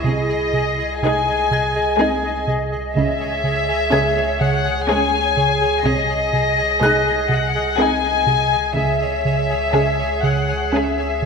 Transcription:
0.00 2.92 G#4 soft
0.00 1.02 D#5 soft
0.00 2.93 G#5 soft
0.00 2.44 C#6 soft
0.04 0.84 C2 soft
0.04 3.00 C2 medium
0.04 0.34 C3 medium
0.04 0.84 C3 soft
0.04 2.97 D#5 soft
0.53 0.83 C3 soft
1.02 1.32 C3 soft
1.02 1.77 G#3 soft
1.02 1.77 D#4 soft
1.02 1.77 G#4 soft
1.02 2.44 G#5 medium
1.51 1.80 C3 soft
1.51 4.38 G#5 soft
1.51 3.91 G#6 soft
1.99 2.72 G#3 soft
1.99 2.28 C4 soft
1.99 2.73 D#4 soft
1.99 2.73 G#4 soft
2.47 2.76 C3 soft
2.95 3.74 C#2 soft
2.95 5.85 C#2 medium
2.95 3.25 C#3 medium
2.95 3.74 C#3 medium
2.95 8.73 G#4 soft
2.95 5.86 C#5 soft
2.95 4.36 E5 medium
2.95 8.73 G#5 soft
3.44 3.73 C#3 soft
3.91 4.21 C#3 soft
3.91 4.65 G#3 soft
3.91 4.65 C#4 soft
3.91 4.65 G#4 soft
3.91 6.78 G#6 soft
4.39 4.70 C#3 medium
4.39 4.88 F#5 medium
4.87 5.62 G#3 soft
4.87 5.61 C#4 medium
4.87 5.18 C#4 soft
4.87 5.62 G#4 soft
4.87 5.82 G#5 medium
5.37 5.66 C#3 soft
5.84 8.79 C2 soft
5.84 6.64 C2 soft
5.84 6.64 C3 medium
5.84 6.15 C3 medium
5.84 7.30 D#5 medium
5.84 8.77 D#5 soft
6.33 6.63 C3 soft
6.81 7.11 C3 soft
6.81 7.56 G#3 soft
6.81 7.56 D#4 soft
6.81 7.56 G#4 soft
6.81 9.71 F#6 soft
7.29 7.59 C3 medium
7.29 7.79 F#5 medium
7.78 8.53 G#3 soft
7.78 8.08 C4 soft
7.78 8.53 D#4 soft
7.78 8.53 G#4 soft
7.78 8.77 G#5 medium
8.27 8.56 C3 medium
8.76 9.56 C#2 soft
8.76 11.25 C#2 medium
8.76 9.06 C#3 medium
8.76 9.56 C#3 medium
8.76 11.25 G#4 soft
8.76 11.25 C#5 soft
8.76 10.21 E5 medium
8.76 11.25 G#5 soft
9.25 9.55 C#3 soft
9.73 10.03 C#3 soft
9.73 10.49 G#3 soft
9.73 10.50 C#4 soft
9.73 10.49 G#4 soft
10.23 10.53 C#3 medium
10.23 10.73 F#5 soft
10.73 11.25 G#3 soft
10.73 11.03 C#4 soft
10.73 11.25 C#4 soft
10.73 11.25 G#4 soft
10.73 11.25 E5 soft
11.22 11.25 C#3 soft

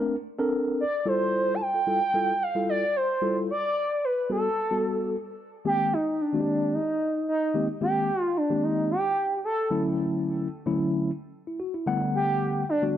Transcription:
0.00 0.15 A3 medium
0.00 0.15 C4 medium
0.00 0.15 D4 medium
0.00 0.15 A#4 loud
0.39 0.82 C4 medium
0.39 0.83 D4 medium
0.39 0.82 A4 medium
0.39 0.83 A#4 loud
0.80 1.00 D5 medium
1.00 1.09 D5 medium
1.05 1.60 G3 medium
1.05 1.60 E4 medium
1.05 1.60 F4 medium
1.05 1.60 A4 medium
1.05 1.56 C5 loud
1.54 1.63 A5 medium
1.62 2.44 G5 loud
1.74 1.79 F4 medium
1.74 1.80 A4 medium
1.87 1.99 G3 medium
1.87 1.99 E4 medium
1.87 1.99 F4 medium
1.87 1.99 A4 medium
2.14 2.31 G3 medium
2.14 2.31 E4 medium
2.14 2.31 F4 medium
2.14 2.32 A4 medium
2.43 2.69 F5 loud
2.55 2.83 G3 medium
2.55 2.83 E4 medium
2.55 2.83 F4 medium
2.55 2.83 A4 medium
2.69 2.98 D5 loud
2.96 3.37 C5 medium
3.22 3.49 G3 medium
3.22 3.49 E4 medium
3.22 3.49 F4 medium
3.22 3.49 A4 medium
3.50 4.06 D5 loud
4.04 4.31 B4 medium
4.29 4.47 G3 medium
4.29 4.47 B3 medium
4.29 4.47 F#4 medium
4.29 4.47 A4 medium
4.29 5.35 A4 medium
4.71 5.15 G3 medium
4.71 5.15 B3 medium
4.71 5.15 F#4 medium
4.71 5.15 A4 medium
5.65 5.93 D#3 medium
5.65 5.93 G#3 medium
5.65 5.93 A#3 medium
5.65 5.93 C4 medium
5.65 5.93 G4 medium
5.65 5.95 G4 loud
5.93 6.22 D#4 medium
6.21 6.75 D4 medium
6.33 6.77 D#3 medium
6.33 6.77 G#3 medium
6.33 6.77 A#3 medium
6.33 6.77 C4 medium
6.33 6.40 F#4 medium
6.40 6.81 G4 medium
6.74 7.28 D#4 medium
7.28 7.67 D#4 medium
7.54 7.66 D#3 medium
7.54 7.66 G#3 medium
7.54 7.66 A#3 medium
7.54 7.66 C4 medium
7.54 7.67 G4 medium
7.81 8.09 D#3 medium
7.81 8.09 G#3 medium
7.81 8.09 A#3 medium
7.81 8.09 C4 medium
7.81 8.09 G4 medium
7.81 8.22 G4 loud
8.22 8.38 F4 loud
8.37 8.65 D4 medium
8.50 8.93 D#3 medium
8.50 8.93 G#3 medium
8.50 8.93 A#3 medium
8.50 8.94 C4 medium
8.50 8.94 G4 medium
8.64 8.90 D#4 medium
8.91 9.40 G4 loud
9.45 9.83 A4 loud
9.70 10.47 D3 medium
9.70 10.47 F#3 medium
9.70 10.47 A3 medium
9.70 10.47 C#4 medium
9.70 10.47 E4 loud
10.66 11.10 D3 medium
10.66 11.10 F#3 medium
10.66 11.10 A3 medium
10.66 11.10 C#4 medium
10.66 11.10 E4 loud
11.47 11.59 E4 medium
11.60 11.73 F#4 medium
11.74 12.00 E4 medium
11.87 12.63 D3 loud
11.87 12.63 G3 medium
11.87 12.63 A3 medium
11.87 12.63 B3 medium
11.87 12.63 F#5 loud
12.15 12.65 G4 loud
12.69 12.94 D4 loud
12.82 12.97 D3 medium
12.82 12.97 G3 medium
12.82 12.97 A3 medium
12.82 12.97 B3 medium
12.82 12.97 F#4 medium

